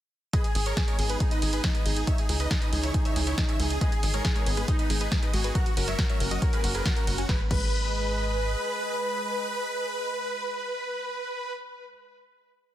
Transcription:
0.33 analog synth pad G#3 B3 D#4, soft synth lead G#4, supersaw synth B4 D#5, grand piano D#5, kick, closed hi-hat
0.44 grand piano G#4, supersaw synth G#4, closed hi-hat
0.55 analog synth bass G#1, grand piano G#4, supersaw synth G#4, open hi-hat, ride
0.66 supersaw synth A#4 C#5, grand piano C#5, closed hi-hat
0.77 supersaw synth G#4, kick, snare, closed hi-hat
0.88 supersaw synth A#4 C#5, grand piano C#5, closed hi-hat
0.99 analog synth bass G#1, grand piano G#4, supersaw synth G#4, open hi-hat, ride
1.09 supersaw synth G#4 B4, grand piano B4, closed hi-hat
1.20 soft synth lead D#4, grand piano G#4, supersaw synth G#4, kick, closed hi-hat
1.31 supersaw synth B4 D#5, grand piano D#5, closed hi-hat
1.42 analog synth bass G#1, grand piano G#4, supersaw synth G#4, open hi-hat, ride
1.53 supersaw synth G#4 B4, grand piano B4, closed hi-hat
1.64 grand piano G#4, supersaw synth G#4, kick, snare, closed hi-hat
1.75 supersaw synth B4 D#5, grand piano D#5, closed hi-hat
1.86 analog synth bass G#1, soft synth lead D#4, grand piano G#4, supersaw synth G#4, open hi-hat, ride
1.97 grand piano G#4, supersaw synth G#4, closed hi-hat
2.07 analog synth pad C#3 E3 C#4 G#4, supersaw synth C#5 E5, grand piano E5, kick, closed hi-hat
2.18 grand piano G#4, supersaw synth G#4, closed hi-hat
2.29 analog synth bass C#2, soft synth lead D#4, grand piano G#4, supersaw synth G#4, open hi-hat, ride
2.40 supersaw synth B4 D#5, grand piano D#5, closed hi-hat
2.51 supersaw synth G#4, kick, snare, closed hi-hat
2.62 supersaw synth B4 D#5, grand piano D#5, closed hi-hat
2.72 analog synth bass C#2, soft synth lead D#4, supersaw synth G#4, grand piano G#4, open hi-hat, ride
2.83 supersaw synth E4 C#5, grand piano C#5, closed hi-hat
2.94 grand piano G#4, supersaw synth G#4, kick, closed hi-hat
3.05 supersaw synth C#5 E5, grand piano E5, closed hi-hat
3.16 analog synth bass C#2, grand piano G#4, supersaw synth G#4, open hi-hat, ride
3.27 supersaw synth E4 C#5, grand piano C#5, closed hi-hat
3.38 grand piano G#4, supersaw synth G#4, kick, snare, closed hi-hat
3.48 supersaw synth C#5 E5, grand piano E5, closed hi-hat
3.59 analog synth bass C#2, grand piano G#4, supersaw synth G#4, open hi-hat, ride
3.70 grand piano G#4, supersaw synth G#4, closed hi-hat
3.81 synth pluck G#3, analog synth pad G#3 B3 D#4, soft synth lead G#4, supersaw synth B4 D#5, grand piano D#5, kick, closed hi-hat
3.92 supersaw synth G#4, grand piano G#4, closed hi-hat
4.03 analog synth bass G#1, synth pluck D#4, grand piano G#4, supersaw synth G#4, open hi-hat, ride
4.14 synth pluck G#3, supersaw synth A#4 C#5, grand piano C#5, closed hi-hat
4.25 synth pluck G#4, supersaw synth G#4, grand piano G#4, kick, snare, closed hi-hat
4.35 synth pluck G#3, supersaw synth A#4 C#5, grand piano C#5, closed hi-hat
4.46 analog synth bass G#1, supersaw synth G#4, grand piano G#4, synth pluck B4, open hi-hat, ride
4.57 synth pluck G#3, supersaw synth G#4 B4, grand piano B4, closed hi-hat
4.68 soft synth lead D#4, supersaw synth G#4, grand piano G#4, synth pluck D#5, kick, closed hi-hat
4.79 supersaw synth B4 D#5, grand piano D#5, closed hi-hat
4.90 analog synth bass G#1, synth pluck G#3, supersaw synth G#4, grand piano G#4, open hi-hat, ride
5.01 synth pluck D#4, supersaw synth G#4 B4, grand piano B4, closed hi-hat
5.12 synth pluck G#3, supersaw synth G#4, grand piano G#4, kick, snare, closed hi-hat
5.23 synth pluck G#4, supersaw synth B4 D#5, grand piano D#5, closed hi-hat
5.33 analog synth bass G#1, synth pluck G#3, soft synth lead F#4, supersaw synth G#4, grand piano G#4, open hi-hat, ride
5.44 supersaw synth G#4, grand piano G#4, synth pluck B4, closed hi-hat
5.55 synth pluck F#3, analog synth pad F#3 A#3 C#4, supersaw synth A#4 F#5, grand piano F#5, kick, closed hi-hat
5.66 grand piano F#4, supersaw synth F#4, closed hi-hat
5.77 analog synth bass F#1, synth pluck C#4, grand piano F#4, supersaw synth F#4, soft synth lead A#4, open hi-hat, ride
5.88 synth pluck F#3, supersaw synth C#5 E5, grand piano E5, closed hi-hat
5.99 supersaw synth F#4, synth pluck F#4, kick, snare, closed hi-hat
6.09 synth pluck F#3, supersaw synth C#5 E5, grand piano E5, closed hi-hat
6.20 analog synth bass F#1, grand piano F#4, supersaw synth F#4, synth pluck A#4, soft synth lead A#4, open hi-hat, ride
6.31 synth pluck F#3, supersaw synth F#4 D#5, grand piano D#5, closed hi-hat
6.42 grand piano F#4, supersaw synth F#4, synth pluck C#5, kick, closed hi-hat
6.53 supersaw synth G#4 B4, grand piano B4, closed hi-hat
6.64 analog synth bass F#1, grand piano F#4, supersaw synth F#4, synth pluck F#5, open hi-hat, ride
6.74 supersaw synth G#4 B4, synth pluck A#4, grand piano B4, closed hi-hat
6.85 synth pluck A#3, grand piano F#4, supersaw synth F#4, kick, snare, closed hi-hat
6.96 synth pluck F#4, supersaw synth F#4 A#4, grand piano A#4, closed hi-hat
7.07 analog synth bass F#1, synth pluck F#3, grand piano F#4, supersaw synth F#4, open hi-hat, ride
7.18 synth pluck C#4, grand piano F#4, supersaw synth F#4, closed hi-hat
7.29 analog synth bass G#1, analog synth pad G#3 G#4 B4 D#5, synth pluck G#3, grand piano B4, soft synth lead B4, supersaw synth B4, kick, snare
7.51 analog synth bass G#1, synth pluck G#3, grand piano B4, supersaw synth B4, soft synth lead B4, kick, crash

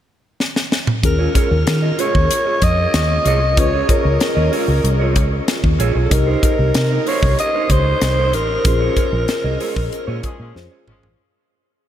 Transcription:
0.40 snare
0.56 snare
0.72 snare
0.87 mid tom
1.03 fingered electric bass D#2, tine electric piano C#4 F4 G#4 A#4, alto saxophone A#4, muted clean electric guitar stroke, kick, closed hi-hat
1.19 clean electric guitar F4 G#4 C#5
1.34 clean electric guitar F4 G#4 C#5, alto saxophone A#4, kick, closed hi-hat
1.51 fingered electric bass D#2, muted clean electric guitar stroke
1.67 fingered electric bass D#3, muted clean electric guitar stroke, snare, closed hi-hat
1.82 clean electric guitar F4 G#4 D#5
1.98 clean electric guitar F4 G#4 C#5, alto saxophone C#5, closed hi-hat
2.14 fingered electric bass D#2, muted clean electric guitar stroke, kick
2.30 muted clean electric guitar stroke, closed hi-hat
2.45 clean electric guitar F4 G#4 C#5
2.61 fingered electric bass F2, alto saxophone D#5, muted clean electric guitar stroke, kick, closed hi-hat
2.77 muted clean electric guitar stroke
2.93 fingered electric bass D#2, muted clean electric guitar stroke, snare, closed hi-hat
3.09 muted clean electric guitar stroke
3.25 fingered electric bass C2, clean electric guitar F4 G#4 C#5, alto saxophone D#5, closed hi-hat
3.41 muted clean electric guitar stroke
3.57 fingered electric bass C#2, tine electric piano C#4 F4 G#4 B4, alto saxophone C#5, muted clean electric guitar stroke, kick, closed hi-hat
3.66 tine electric piano C#5
3.73 clean electric guitar F4 G#4 C#5
3.88 clean electric guitar F4 G#4 C#5, alto saxophone A#4, kick, closed hi-hat
4.04 fingered electric bass C#2, muted clean electric guitar stroke
4.20 muted clean electric guitar stroke, snare, closed hi-hat
4.35 fingered electric bass D#2, clean electric guitar F4 G#4 D#5
4.52 clean electric guitar F4 G#4 C#5, open hi-hat
4.67 fingered electric bass C#2, muted clean electric guitar stroke
4.84 fingered electric bass C2, muted clean electric guitar stroke, closed hi-hat
5.00 clean electric guitar F4 G#4 C#5
5.16 fingered electric bass C#2, muted clean electric guitar stroke, kick, closed hi-hat
5.32 muted clean electric guitar stroke
5.48 muted clean electric guitar stroke, snare, closed hi-hat
5.64 fingered electric bass D#2, muted clean electric guitar stroke, kick
5.79 fingered electric bass A#1, clean electric guitar F4 G#4 C#5, closed hi-hat
5.95 fingered electric bass B1, clean electric guitar F4 G#4 C#5
6.05 alto saxophone A4
6.10 fingered electric bass C2, tine electric piano D#4 G4 A#4 D#5, alto saxophone A#4, muted clean electric guitar stroke, kick, closed hi-hat
6.26 clean electric guitar D#4 A#4 C5
6.42 clean electric guitar D#4 A#4 C5, alto saxophone A#4, kick, closed hi-hat
6.58 fingered electric bass C2, muted clean electric guitar stroke
6.74 fingered electric bass C3, muted clean electric guitar stroke, snare, closed hi-hat
6.90 clean electric guitar D#4 A#4 D#5
7.06 clean electric guitar D#4 A#4 C5, alto saxophone C#5, open hi-hat
7.22 fingered electric bass C2, muted clean electric guitar stroke, kick
7.38 alto saxophone D#5, muted clean electric guitar stroke, closed hi-hat
7.54 clean electric guitar D#4 A#4 C5
7.70 fingered electric bass C#2, alto saxophone C5, muted clean electric guitar stroke, kick, closed hi-hat
7.86 muted clean electric guitar stroke
8.01 fingered electric bass C2, muted clean electric guitar stroke, snare, closed hi-hat
8.17 clean electric guitar D#4 A#4 C5
8.33 fingered electric bass A1, alto saxophone A#4, muted clean electric guitar stroke, closed hi-hat
8.49 muted clean electric guitar stroke
8.64 fingered electric bass A#1, tine electric piano C#4 F4 G#4 C5, muted clean electric guitar stroke, kick, closed hi-hat
8.80 clean electric guitar F4 G#4 C#5
8.96 clean electric guitar F4 G#4 C#5, kick, closed hi-hat
9.12 fingered electric bass A#1, muted clean electric guitar stroke
9.28 muted clean electric guitar stroke, snare, closed hi-hat
9.44 fingered electric bass C2, clean electric guitar F4 G#4 D#5
9.59 clean electric guitar F4 G#4 C#5, open hi-hat
9.76 fingered electric bass A#1, muted clean electric guitar stroke, kick
9.91 muted clean electric guitar stroke, closed hi-hat
10.07 fingered electric bass A#2, clean electric guitar F4 G#4 C#5
10.23 horn section F3 G#3 C#4 G#4, muted clean electric guitar stroke, kick, closed hi-hat
10.39 fingered electric bass A#2, horn section F3 G#3 C#4 G#4, muted clean electric guitar stroke
10.55 fingered electric bass F2, tine electric piano C#4 F4 G#4 C5, muted clean electric guitar stroke, snare
10.71 clean electric guitar F4 G#4 C#5
10.87 fingered electric bass G#1, horn section F3 G#3 C#4 G#4, muted clean electric guitar stroke, mid tom
11.03 fingered electric bass A1, muted clean electric guitar stroke, floor tom

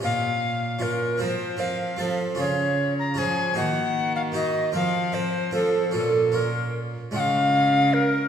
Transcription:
0.00 harpsichord A#2 C#4 F4 A#4
0.04 cello A#2, recorder F5
0.79 harpsichord C#4 F4 A#4, recorder A#4
1.18 harpsichord F3 C4 F4 A#4, recorder C5
1.22 cello F3
1.57 harpsichord C4 F4 A#4, recorder F5
1.97 cello F3, harpsichord F3 C4 F4 A4
2.35 harpsichord C#3 C#4 F4 G#4
2.40 cello C#3, recorder C#5
2.99 recorder A#5
3.14 harpsichord F3 C#4 F4 G#4, recorder G#5
3.19 cello F3
3.53 harpsichord D#3 A#3 D#4 F#4, recorder F#5
3.58 cello D#3
4.16 recorder F5
4.32 harpsichord A#3 D#4 F#4, recorder D#5
4.72 harpsichord F3 C4 A#4, cello F3, recorder F5
5.12 harpsichord C4 A#4, recorder C5
5.51 harpsichord F3 C4 F4, cello F3, recorder A4
5.91 harpsichord A#2 C#4 F4, recorder A4
5.96 cello A#2
6.32 harpsichord C#4 F4, recorder A#4
7.11 harpsichord C#3 G#3 C#4 F4, cello C#3
7.16 recorder F#5
7.20 recorder F5
7.94 recorder A#4

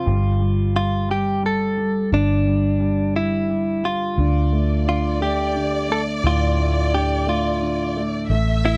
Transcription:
Already playing: clean electric guitar F4
0.06 fingered electric bass G1, grand piano G3
0.40 grand piano G3
0.75 grand piano G3, clean electric guitar F4
1.09 grand piano G3, clean electric guitar G4
1.43 grand piano G3, clean electric guitar A4
1.77 grand piano G3
2.12 fingered electric bass G1, grand piano D3, clean electric guitar D4
2.46 grand piano G3
2.80 grand piano G3
3.16 grand piano G3, clean electric guitar E4
3.49 grand piano G3
3.83 grand piano G3, clean electric guitar F4
4.18 fingered electric bass D2, grand piano D3, violin section D5
4.52 grand piano A3
4.86 grand piano D3, clean electric guitar F4
5.20 grand piano A3, clean electric guitar G4
5.54 grand piano D3
5.88 grand piano A3, clean electric guitar A4
6.23 fingered electric bass D2, grand piano A2, clean electric guitar F4
6.58 grand piano A3
6.93 grand piano D3, clean electric guitar G4
7.26 grand piano A3, clean electric guitar F4
7.61 grand piano D3
7.96 grand piano A3
8.30 fingered electric bass A1, grand piano A3, violin section E5
8.65 grand piano A3, clean electric guitar E4

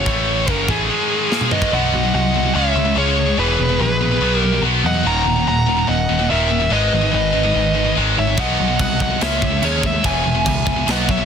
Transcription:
Already playing: lead electric guitar C#5
0.05 picked electric bass A1, distorted electric guitar A2 E3 A3, kick, china
0.47 picked electric bass F#1, distorted electric guitar F#2 C#3 F#3, lead electric guitar A#4, kick, china
0.68 picked electric bass A1, distorted electric guitar A2 E3 A3, lead electric guitar G#4, kick
0.89 distorted electric guitar G#2 D#3 G#3
1.30 distorted electric guitar A#2 F3 A#3, snare
1.41 mid tom
1.51 distorted electric guitar G#2 D#3 G#3, lead electric guitar B4 D#5, mid tom
1.62 kick
1.72 picked electric bass B1, distorted electric guitar B2 F#3 B3, lead electric guitar D#5 F#5
1.93 picked electric bass B1, distorted electric guitar B2 F#3
2.03 distorted electric guitar B2 F#3
2.13 picked electric bass C2, distorted electric guitar B2 F#3, lead electric guitar D#5 F#5
2.34 distorted electric guitar B2 F#3
2.43 distorted electric guitar B2 F#3
2.55 picked electric bass C#2, distorted electric guitar C#3 G#3 C#4, lead electric guitar C#5 E5
2.75 picked electric bass C#2, distorted electric guitar C#3 G#3
2.85 distorted electric guitar C#3 G#3
2.95 picked electric bass C#2, distorted electric guitar C#3 G#3 C#4, lead electric guitar G#4 C#5
3.17 distorted electric guitar C#3 G#3
3.27 distorted electric guitar C#3 G#3
3.37 picked electric bass E1, distorted electric guitar E2 B2 E3, lead electric guitar G#4 B4
3.58 picked electric bass E1, distorted electric guitar E2 B2
3.69 distorted electric guitar E2 B2
3.79 picked electric bass A#1, distorted electric guitar E2 B2, lead electric guitar G#4 B4
4.01 distorted electric guitar E2 B2
4.11 distorted electric guitar E2 B2
4.21 picked electric bass B1, distorted electric guitar B2 F#3 B3
4.36 lead electric guitar G4 A#4
4.42 distorted electric guitar B2 F#3
4.53 distorted electric guitar B2 F#3
4.62 picked electric bass B1, distorted electric guitar B2 F#3 B3
4.83 picked electric bass E2, distorted electric guitar B2 F#3, lead electric guitar D#5 F#5
4.94 distorted electric guitar B2 F#3
5.03 picked electric bass D#1, distorted electric guitar D#2 A#2 D#3, lead electric guitar F#5 A#5
5.25 picked electric bass D#1, distorted electric guitar D#2 A#2
5.36 distorted electric guitar D#2 A#2
5.47 picked electric bass D#1, distorted electric guitar D#2 A#2, lead electric guitar F#5 A#5
5.66 distorted electric guitar D#2 A#2
5.77 distorted electric guitar D#2 A#2
5.87 picked electric bass D#1, distorted electric guitar D#2 A#2, lead electric guitar D#5 F#5
6.09 picked electric bass D#1, distorted electric guitar D#2 A#2
6.19 distorted electric guitar D#2 A#2
6.30 picked electric bass D#1, distorted electric guitar D#2 A#2 D#3, lead electric guitar A#4 E5
6.50 distorted electric guitar D#2 A#2
6.60 distorted electric guitar D#2 A#2
6.70 picked electric bass G#1, distorted electric guitar G#2 D#3 G#3, lead electric guitar B4 D#5
6.91 picked electric bass G#1, distorted electric guitar G#2 D#3
7.01 distorted electric guitar G#2 D#3
7.12 picked electric bass G#1, distorted electric guitar G#2 D#3, lead electric guitar B4 D#5
7.33 distorted electric guitar G#2 D#3
7.43 distorted electric guitar G#2 D#3
7.54 picked electric bass G#1, distorted electric guitar G#2 D#3
7.75 distorted electric guitar G#2 D#3
7.84 distorted electric guitar G#2 D#3
7.95 picked electric bass G#1, distorted electric guitar G#2 D#3 G#3
8.17 picked electric bass G#1, distorted electric guitar G#2 D#3, lead electric guitar C#5 E5
8.27 distorted electric guitar G#2 D#3
8.37 picked electric bass B1, distorted electric guitar B2 F#3 B3, lead electric guitar D#5 F#5, kick, crash
8.58 picked electric bass B1, distorted electric guitar B2 F#3
8.68 distorted electric guitar B2 F#3
8.79 picked electric bass C2, distorted electric guitar B2 F#3, lead electric guitar F#5, kick, crash
8.84 lead electric guitar D#5
9.00 distorted electric guitar B2 F#3, lead electric guitar D#5 F#5, kick
9.10 distorted electric guitar B2 F#3
9.21 picked electric bass C#2, distorted electric guitar C#3 G#3 C#4, lead electric guitar C#5 E5, snare, crash
9.42 picked electric bass C#2, distorted electric guitar C#3 G#3, kick
9.51 distorted electric guitar C#3 G#3
9.62 picked electric bass D#2, distorted electric guitar C#3 G#3 C#4, lead electric guitar G#4 C#5, crash
9.83 distorted electric guitar C#3 G#3, lead electric guitar C#5 E5, kick
9.93 distorted electric guitar C#3 G#3
10.03 picked electric bass E1, distorted electric guitar E2 B2 E3, lead electric guitar E5 G#5, kick, crash
10.25 picked electric bass E1, distorted electric guitar E2 B2
10.35 distorted electric guitar E2 B2
10.45 picked electric bass C#2, distorted electric guitar E2 B2, lead electric guitar E5, kick, crash
10.49 lead electric guitar G#5
10.66 distorted electric guitar E2 B2, kick
10.76 distorted electric guitar E2 B2
10.86 picked electric bass B1, distorted electric guitar B2 F#3 B3, lead electric guitar D#5, snare, crash
10.91 lead electric guitar F#5
11.07 distorted electric guitar B2 F#3, lead electric guitar E5, kick
11.11 lead electric guitar C#5
11.17 distorted electric guitar B2 F#3

